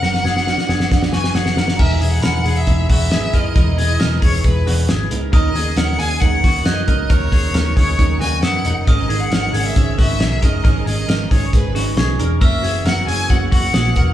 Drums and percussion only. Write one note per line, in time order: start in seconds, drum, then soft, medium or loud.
0.03 snare medium
0.14 snare soft
0.25 snare medium
0.37 snare medium
0.47 snare medium
0.58 snare medium
0.69 snare medium
0.80 snare medium
0.92 kick medium
0.92 snare medium
1.02 snare medium
1.13 snare medium
1.24 snare medium
1.35 snare medium
1.46 snare medium
1.57 snare loud
1.68 snare medium
1.79 kick loud
1.79 crash loud
2.01 hi-hat pedal medium
2.01 open hi-hat medium
2.23 snare loud
2.23 hi-hat pedal medium
2.23 open hi-hat loud
2.45 hi-hat pedal medium
2.45 open hi-hat medium
2.67 kick medium
2.67 hi-hat pedal medium
2.67 open hi-hat medium
2.89 kick medium
2.89 hi-hat pedal medium
2.89 open hi-hat medium
3.11 snare loud
3.11 hi-hat pedal medium
3.11 open hi-hat medium
3.33 kick medium
3.33 hi-hat pedal medium
3.33 open hi-hat medium
3.56 kick loud
3.56 hi-hat pedal medium
3.56 open hi-hat medium
3.78 hi-hat pedal medium
3.78 open hi-hat medium
4.00 snare loud
4.00 hi-hat pedal medium
4.00 open hi-hat loud
4.22 kick loud
4.22 hi-hat pedal medium
4.22 open hi-hat medium
4.44 kick medium
4.44 hi-hat pedal medium
4.44 open hi-hat medium
4.67 snare soft
4.67 hi-hat pedal medium
4.67 open hi-hat medium
4.89 snare loud
4.89 hi-hat pedal medium
4.89 open hi-hat medium
5.11 hi-hat pedal medium
5.11 open hi-hat medium
5.33 kick loud
5.33 hi-hat pedal medium
5.33 open hi-hat medium
5.55 hi-hat pedal medium
5.55 open hi-hat medium
5.77 snare loud
5.77 hi-hat pedal medium
5.77 open hi-hat medium
5.99 hi-hat pedal medium
5.99 open hi-hat medium
6.22 kick medium
6.22 hi-hat pedal medium
6.22 open hi-hat loud
6.44 kick medium
6.44 snare soft
6.44 hi-hat pedal medium
6.44 open hi-hat medium
6.65 snare loud
6.65 hi-hat pedal medium
6.65 open hi-hat medium
6.88 kick medium
6.88 hi-hat pedal medium
6.88 open hi-hat medium
7.10 kick loud
7.10 hi-hat pedal medium
7.10 open hi-hat medium
7.32 kick medium
7.32 hi-hat pedal medium
7.32 open hi-hat medium
7.54 snare loud
7.54 hi-hat pedal medium
7.54 open hi-hat loud
7.77 kick loud
7.77 hi-hat pedal medium
7.77 open hi-hat medium
7.99 kick medium
7.99 hi-hat pedal medium
7.99 open hi-hat medium
8.21 snare soft
8.21 hi-hat pedal medium
8.21 open hi-hat medium
8.43 snare loud
8.43 hi-hat pedal medium
8.43 open hi-hat medium
8.65 hi-hat pedal medium
8.65 open hi-hat medium
8.87 kick loud
8.87 hi-hat pedal medium
8.87 open hi-hat medium
9.10 hi-hat pedal medium
9.10 open hi-hat medium
9.32 snare loud
9.32 hi-hat pedal medium
9.32 open hi-hat medium
9.54 hi-hat pedal medium
9.54 open hi-hat medium
9.76 kick medium
9.76 hi-hat pedal medium
9.76 open hi-hat loud
9.99 kick medium
9.99 snare soft
9.99 hi-hat pedal medium
9.99 open hi-hat medium
10.20 snare loud
10.20 hi-hat pedal medium
10.20 open hi-hat medium
10.43 kick medium
10.43 hi-hat pedal medium
10.43 open hi-hat medium
10.65 kick loud
10.65 hi-hat pedal medium
10.65 open hi-hat medium
10.87 hi-hat pedal medium
10.87 open hi-hat medium
11.09 snare loud
11.09 hi-hat pedal medium
11.09 open hi-hat loud
11.31 kick medium
11.31 hi-hat pedal medium
11.31 open hi-hat medium
11.53 kick medium
11.53 hi-hat pedal medium
11.53 open hi-hat loud
11.75 snare soft
11.75 hi-hat pedal medium
11.75 open hi-hat medium
11.97 snare loud
11.97 hi-hat pedal medium
11.97 open hi-hat medium
12.20 hi-hat pedal medium
12.20 open hi-hat medium
12.41 kick loud
12.41 hi-hat pedal medium
12.41 open hi-hat medium
12.64 hi-hat pedal medium
12.64 open hi-hat medium
12.86 snare loud
12.86 hi-hat pedal medium
12.86 open hi-hat loud
13.08 hi-hat pedal medium
13.08 open hi-hat medium
13.30 kick medium
13.30 hi-hat pedal medium
13.30 open hi-hat medium
13.52 kick medium
13.52 hi-hat pedal medium
13.52 open hi-hat medium
13.74 snare loud
13.74 hi-hat pedal medium
13.74 open hi-hat loud
13.96 kick medium
13.96 hi-hat pedal medium
13.96 open hi-hat medium